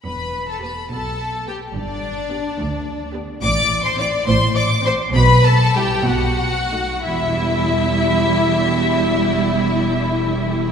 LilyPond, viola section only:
\new Staff \with { instrumentName = "Viola section" } { \time 6/8 \key e \minor \tempo 4. = 67 r4 <b g'>8 r4 <b g'>8 | r4 <b g'>8 r4 <b g'>8 | r4 <c' e'>8 r4 <c' fis'>8 | r4 <g e'>8 r4 <a dis'>8 |
<g e'>2.~ | <g e'>2. | }